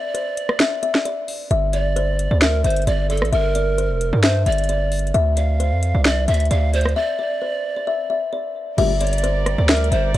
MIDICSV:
0, 0, Header, 1, 7, 480
1, 0, Start_track
1, 0, Tempo, 454545
1, 1592, Time_signature, 4, 2, 24, 8
1, 10747, End_track
2, 0, Start_track
2, 0, Title_t, "Kalimba"
2, 0, Program_c, 0, 108
2, 0, Note_on_c, 0, 74, 70
2, 107, Note_off_c, 0, 74, 0
2, 152, Note_on_c, 0, 72, 75
2, 497, Note_off_c, 0, 72, 0
2, 519, Note_on_c, 0, 74, 63
2, 611, Note_off_c, 0, 74, 0
2, 633, Note_on_c, 0, 76, 88
2, 827, Note_off_c, 0, 76, 0
2, 873, Note_on_c, 0, 76, 83
2, 1067, Note_off_c, 0, 76, 0
2, 1113, Note_on_c, 0, 74, 82
2, 1307, Note_off_c, 0, 74, 0
2, 1593, Note_on_c, 0, 76, 102
2, 1787, Note_off_c, 0, 76, 0
2, 1833, Note_on_c, 0, 74, 76
2, 2027, Note_off_c, 0, 74, 0
2, 2071, Note_on_c, 0, 72, 96
2, 2417, Note_off_c, 0, 72, 0
2, 2441, Note_on_c, 0, 74, 78
2, 2532, Note_off_c, 0, 74, 0
2, 2551, Note_on_c, 0, 76, 88
2, 2746, Note_off_c, 0, 76, 0
2, 2791, Note_on_c, 0, 76, 79
2, 2986, Note_off_c, 0, 76, 0
2, 3032, Note_on_c, 0, 74, 88
2, 3227, Note_off_c, 0, 74, 0
2, 3271, Note_on_c, 0, 74, 83
2, 3466, Note_off_c, 0, 74, 0
2, 3512, Note_on_c, 0, 76, 99
2, 3706, Note_off_c, 0, 76, 0
2, 3753, Note_on_c, 0, 74, 79
2, 3947, Note_off_c, 0, 74, 0
2, 3992, Note_on_c, 0, 72, 76
2, 4337, Note_off_c, 0, 72, 0
2, 4360, Note_on_c, 0, 74, 73
2, 4451, Note_off_c, 0, 74, 0
2, 4472, Note_on_c, 0, 76, 102
2, 4666, Note_off_c, 0, 76, 0
2, 4714, Note_on_c, 0, 76, 85
2, 4908, Note_off_c, 0, 76, 0
2, 4953, Note_on_c, 0, 74, 81
2, 5147, Note_off_c, 0, 74, 0
2, 5431, Note_on_c, 0, 76, 118
2, 5626, Note_off_c, 0, 76, 0
2, 5673, Note_on_c, 0, 74, 81
2, 5867, Note_off_c, 0, 74, 0
2, 5912, Note_on_c, 0, 72, 90
2, 6257, Note_off_c, 0, 72, 0
2, 6281, Note_on_c, 0, 74, 76
2, 6372, Note_off_c, 0, 74, 0
2, 6391, Note_on_c, 0, 76, 88
2, 6586, Note_off_c, 0, 76, 0
2, 6631, Note_on_c, 0, 76, 78
2, 6826, Note_off_c, 0, 76, 0
2, 6872, Note_on_c, 0, 74, 94
2, 7067, Note_off_c, 0, 74, 0
2, 7114, Note_on_c, 0, 74, 80
2, 7308, Note_off_c, 0, 74, 0
2, 7353, Note_on_c, 0, 76, 96
2, 7547, Note_off_c, 0, 76, 0
2, 7592, Note_on_c, 0, 74, 71
2, 7787, Note_off_c, 0, 74, 0
2, 7832, Note_on_c, 0, 72, 75
2, 8177, Note_off_c, 0, 72, 0
2, 8200, Note_on_c, 0, 74, 64
2, 8291, Note_off_c, 0, 74, 0
2, 8313, Note_on_c, 0, 76, 91
2, 8507, Note_off_c, 0, 76, 0
2, 8553, Note_on_c, 0, 76, 79
2, 8747, Note_off_c, 0, 76, 0
2, 8793, Note_on_c, 0, 74, 79
2, 8987, Note_off_c, 0, 74, 0
2, 9274, Note_on_c, 0, 76, 110
2, 9467, Note_off_c, 0, 76, 0
2, 9514, Note_on_c, 0, 74, 81
2, 9708, Note_off_c, 0, 74, 0
2, 9752, Note_on_c, 0, 72, 93
2, 10097, Note_off_c, 0, 72, 0
2, 10121, Note_on_c, 0, 74, 81
2, 10212, Note_off_c, 0, 74, 0
2, 10232, Note_on_c, 0, 76, 89
2, 10427, Note_off_c, 0, 76, 0
2, 10472, Note_on_c, 0, 76, 81
2, 10666, Note_off_c, 0, 76, 0
2, 10713, Note_on_c, 0, 74, 91
2, 10747, Note_off_c, 0, 74, 0
2, 10747, End_track
3, 0, Start_track
3, 0, Title_t, "Pan flute"
3, 0, Program_c, 1, 75
3, 0, Note_on_c, 1, 74, 103
3, 1070, Note_off_c, 1, 74, 0
3, 1832, Note_on_c, 1, 74, 85
3, 2510, Note_off_c, 1, 74, 0
3, 2553, Note_on_c, 1, 70, 85
3, 2780, Note_off_c, 1, 70, 0
3, 2793, Note_on_c, 1, 72, 80
3, 3021, Note_off_c, 1, 72, 0
3, 3032, Note_on_c, 1, 74, 82
3, 3260, Note_off_c, 1, 74, 0
3, 3273, Note_on_c, 1, 69, 90
3, 3501, Note_off_c, 1, 69, 0
3, 3512, Note_on_c, 1, 70, 116
3, 4430, Note_off_c, 1, 70, 0
3, 4473, Note_on_c, 1, 72, 94
3, 4701, Note_off_c, 1, 72, 0
3, 4713, Note_on_c, 1, 74, 80
3, 5390, Note_off_c, 1, 74, 0
3, 5672, Note_on_c, 1, 77, 82
3, 6350, Note_off_c, 1, 77, 0
3, 6392, Note_on_c, 1, 74, 100
3, 6620, Note_off_c, 1, 74, 0
3, 6632, Note_on_c, 1, 76, 83
3, 6860, Note_off_c, 1, 76, 0
3, 6873, Note_on_c, 1, 77, 81
3, 7100, Note_off_c, 1, 77, 0
3, 7113, Note_on_c, 1, 72, 88
3, 7341, Note_off_c, 1, 72, 0
3, 7352, Note_on_c, 1, 74, 101
3, 8750, Note_off_c, 1, 74, 0
3, 9512, Note_on_c, 1, 73, 84
3, 9639, Note_off_c, 1, 73, 0
3, 9639, Note_on_c, 1, 74, 84
3, 10190, Note_off_c, 1, 74, 0
3, 10233, Note_on_c, 1, 70, 89
3, 10460, Note_off_c, 1, 70, 0
3, 10473, Note_on_c, 1, 72, 83
3, 10701, Note_off_c, 1, 72, 0
3, 10712, Note_on_c, 1, 74, 84
3, 10747, Note_off_c, 1, 74, 0
3, 10747, End_track
4, 0, Start_track
4, 0, Title_t, "String section"
4, 0, Program_c, 2, 48
4, 9272, Note_on_c, 2, 55, 81
4, 9272, Note_on_c, 2, 67, 75
4, 9272, Note_on_c, 2, 70, 72
4, 9272, Note_on_c, 2, 74, 87
4, 10747, Note_off_c, 2, 55, 0
4, 10747, Note_off_c, 2, 67, 0
4, 10747, Note_off_c, 2, 70, 0
4, 10747, Note_off_c, 2, 74, 0
4, 10747, End_track
5, 0, Start_track
5, 0, Title_t, "Brass ensemble"
5, 0, Program_c, 3, 61
5, 9272, Note_on_c, 3, 38, 98
5, 9272, Note_on_c, 3, 46, 95
5, 9272, Note_on_c, 3, 55, 107
5, 9425, Note_off_c, 3, 38, 0
5, 9425, Note_off_c, 3, 46, 0
5, 9425, Note_off_c, 3, 55, 0
5, 10747, End_track
6, 0, Start_track
6, 0, Title_t, "808-style bass"
6, 0, Program_c, 4, 38
6, 1592, Note_on_c, 4, 31, 106
6, 2405, Note_off_c, 4, 31, 0
6, 2439, Note_on_c, 4, 38, 102
6, 2778, Note_off_c, 4, 38, 0
6, 2792, Note_on_c, 4, 31, 101
6, 3022, Note_off_c, 4, 31, 0
6, 3032, Note_on_c, 4, 31, 111
6, 3399, Note_on_c, 4, 33, 98
6, 3415, Note_off_c, 4, 31, 0
6, 3506, Note_off_c, 4, 33, 0
6, 3512, Note_on_c, 4, 31, 101
6, 4119, Note_on_c, 4, 29, 98
6, 4135, Note_off_c, 4, 31, 0
6, 4347, Note_off_c, 4, 29, 0
6, 4359, Note_on_c, 4, 43, 104
6, 4698, Note_off_c, 4, 43, 0
6, 4712, Note_on_c, 4, 31, 104
6, 5403, Note_off_c, 4, 31, 0
6, 5432, Note_on_c, 4, 38, 104
6, 6039, Note_on_c, 4, 41, 96
6, 6055, Note_off_c, 4, 38, 0
6, 6267, Note_off_c, 4, 41, 0
6, 6279, Note_on_c, 4, 36, 101
6, 6618, Note_off_c, 4, 36, 0
6, 6632, Note_on_c, 4, 38, 102
6, 6863, Note_off_c, 4, 38, 0
6, 6872, Note_on_c, 4, 38, 107
6, 7333, Note_off_c, 4, 38, 0
6, 9272, Note_on_c, 4, 31, 107
6, 10086, Note_off_c, 4, 31, 0
6, 10120, Note_on_c, 4, 38, 103
6, 10458, Note_off_c, 4, 38, 0
6, 10472, Note_on_c, 4, 31, 103
6, 10703, Note_off_c, 4, 31, 0
6, 10713, Note_on_c, 4, 31, 113
6, 10747, Note_off_c, 4, 31, 0
6, 10747, End_track
7, 0, Start_track
7, 0, Title_t, "Drums"
7, 154, Note_on_c, 9, 42, 84
7, 260, Note_off_c, 9, 42, 0
7, 394, Note_on_c, 9, 42, 82
7, 499, Note_off_c, 9, 42, 0
7, 518, Note_on_c, 9, 37, 92
7, 624, Note_off_c, 9, 37, 0
7, 632, Note_on_c, 9, 38, 118
7, 632, Note_on_c, 9, 42, 83
7, 737, Note_off_c, 9, 38, 0
7, 738, Note_off_c, 9, 42, 0
7, 874, Note_on_c, 9, 42, 78
7, 980, Note_off_c, 9, 42, 0
7, 1000, Note_on_c, 9, 38, 71
7, 1106, Note_off_c, 9, 38, 0
7, 1112, Note_on_c, 9, 42, 92
7, 1218, Note_off_c, 9, 42, 0
7, 1353, Note_on_c, 9, 46, 74
7, 1459, Note_off_c, 9, 46, 0
7, 1593, Note_on_c, 9, 42, 62
7, 1698, Note_off_c, 9, 42, 0
7, 1829, Note_on_c, 9, 42, 85
7, 1935, Note_off_c, 9, 42, 0
7, 2074, Note_on_c, 9, 42, 81
7, 2180, Note_off_c, 9, 42, 0
7, 2314, Note_on_c, 9, 42, 82
7, 2419, Note_off_c, 9, 42, 0
7, 2551, Note_on_c, 9, 38, 119
7, 2552, Note_on_c, 9, 42, 87
7, 2657, Note_off_c, 9, 38, 0
7, 2657, Note_off_c, 9, 42, 0
7, 2792, Note_on_c, 9, 42, 81
7, 2856, Note_off_c, 9, 42, 0
7, 2856, Note_on_c, 9, 42, 72
7, 2919, Note_off_c, 9, 42, 0
7, 2919, Note_on_c, 9, 42, 58
7, 2976, Note_off_c, 9, 42, 0
7, 2976, Note_on_c, 9, 42, 46
7, 3033, Note_off_c, 9, 42, 0
7, 3033, Note_on_c, 9, 42, 97
7, 3138, Note_off_c, 9, 42, 0
7, 3272, Note_on_c, 9, 42, 67
7, 3352, Note_off_c, 9, 42, 0
7, 3352, Note_on_c, 9, 42, 52
7, 3399, Note_on_c, 9, 37, 89
7, 3432, Note_off_c, 9, 42, 0
7, 3432, Note_on_c, 9, 42, 41
7, 3505, Note_off_c, 9, 37, 0
7, 3513, Note_off_c, 9, 42, 0
7, 3513, Note_on_c, 9, 42, 61
7, 3618, Note_off_c, 9, 42, 0
7, 3750, Note_on_c, 9, 42, 89
7, 3855, Note_off_c, 9, 42, 0
7, 3994, Note_on_c, 9, 42, 82
7, 4100, Note_off_c, 9, 42, 0
7, 4234, Note_on_c, 9, 42, 83
7, 4339, Note_off_c, 9, 42, 0
7, 4471, Note_on_c, 9, 38, 121
7, 4472, Note_on_c, 9, 42, 82
7, 4577, Note_off_c, 9, 38, 0
7, 4577, Note_off_c, 9, 42, 0
7, 4712, Note_on_c, 9, 42, 83
7, 4776, Note_off_c, 9, 42, 0
7, 4776, Note_on_c, 9, 42, 72
7, 4839, Note_off_c, 9, 42, 0
7, 4839, Note_on_c, 9, 42, 56
7, 4896, Note_off_c, 9, 42, 0
7, 4896, Note_on_c, 9, 42, 47
7, 4953, Note_off_c, 9, 42, 0
7, 4953, Note_on_c, 9, 42, 93
7, 5058, Note_off_c, 9, 42, 0
7, 5192, Note_on_c, 9, 42, 68
7, 5193, Note_on_c, 9, 46, 70
7, 5272, Note_off_c, 9, 42, 0
7, 5272, Note_on_c, 9, 42, 53
7, 5299, Note_off_c, 9, 46, 0
7, 5352, Note_off_c, 9, 42, 0
7, 5352, Note_on_c, 9, 42, 43
7, 5433, Note_off_c, 9, 42, 0
7, 5433, Note_on_c, 9, 42, 63
7, 5538, Note_off_c, 9, 42, 0
7, 5669, Note_on_c, 9, 42, 89
7, 5775, Note_off_c, 9, 42, 0
7, 5915, Note_on_c, 9, 42, 83
7, 6020, Note_off_c, 9, 42, 0
7, 6154, Note_on_c, 9, 42, 84
7, 6259, Note_off_c, 9, 42, 0
7, 6391, Note_on_c, 9, 38, 116
7, 6392, Note_on_c, 9, 42, 85
7, 6497, Note_off_c, 9, 38, 0
7, 6497, Note_off_c, 9, 42, 0
7, 6632, Note_on_c, 9, 42, 83
7, 6696, Note_off_c, 9, 42, 0
7, 6696, Note_on_c, 9, 42, 71
7, 6759, Note_off_c, 9, 42, 0
7, 6759, Note_on_c, 9, 42, 58
7, 6816, Note_off_c, 9, 42, 0
7, 6816, Note_on_c, 9, 42, 48
7, 6872, Note_off_c, 9, 42, 0
7, 6872, Note_on_c, 9, 42, 93
7, 6978, Note_off_c, 9, 42, 0
7, 7112, Note_on_c, 9, 42, 65
7, 7192, Note_off_c, 9, 42, 0
7, 7192, Note_on_c, 9, 42, 52
7, 7239, Note_on_c, 9, 37, 93
7, 7272, Note_off_c, 9, 42, 0
7, 7272, Note_on_c, 9, 42, 41
7, 7345, Note_off_c, 9, 37, 0
7, 7378, Note_off_c, 9, 42, 0
7, 9272, Note_on_c, 9, 49, 101
7, 9273, Note_on_c, 9, 42, 61
7, 9378, Note_off_c, 9, 42, 0
7, 9378, Note_off_c, 9, 49, 0
7, 9510, Note_on_c, 9, 46, 91
7, 9512, Note_on_c, 9, 42, 74
7, 9576, Note_off_c, 9, 42, 0
7, 9576, Note_on_c, 9, 42, 69
7, 9615, Note_off_c, 9, 46, 0
7, 9640, Note_off_c, 9, 42, 0
7, 9640, Note_on_c, 9, 42, 74
7, 9696, Note_off_c, 9, 42, 0
7, 9696, Note_on_c, 9, 42, 72
7, 9755, Note_off_c, 9, 42, 0
7, 9755, Note_on_c, 9, 42, 85
7, 9861, Note_off_c, 9, 42, 0
7, 9992, Note_on_c, 9, 37, 68
7, 9994, Note_on_c, 9, 42, 79
7, 10098, Note_off_c, 9, 37, 0
7, 10100, Note_off_c, 9, 42, 0
7, 10232, Note_on_c, 9, 38, 120
7, 10232, Note_on_c, 9, 42, 79
7, 10313, Note_off_c, 9, 42, 0
7, 10313, Note_on_c, 9, 42, 64
7, 10338, Note_off_c, 9, 38, 0
7, 10393, Note_off_c, 9, 42, 0
7, 10393, Note_on_c, 9, 42, 46
7, 10474, Note_off_c, 9, 42, 0
7, 10474, Note_on_c, 9, 42, 81
7, 10580, Note_off_c, 9, 42, 0
7, 10713, Note_on_c, 9, 42, 88
7, 10747, Note_off_c, 9, 42, 0
7, 10747, End_track
0, 0, End_of_file